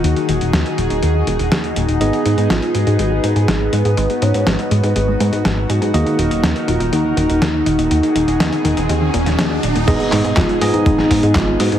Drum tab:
CC |----------------|----------------|----------------|----------------|
HH |xxxxxxxxx-xxxxxx|xxxxxxxxx-xxx-xx|xxxxxxxxx-xxx-xx|xxxxxxxxx-xxx-xx|
CP |----------------|----------------|----------------|----------------|
SD |----o-------o---|----o-------o---|----o-------o---|----o-------o---|
BD |----------------|----------------|----------------|----------------|

CC |----------------|x---------------|
HH |xxxxxxxxx-xxx-xx|xxoxxxoxx-oxx-ox|
CP |----------------|--x-x-------x---|
SD |----o------oo---|----o----o--o---|
BD |----------------|o---o---o-o-o---|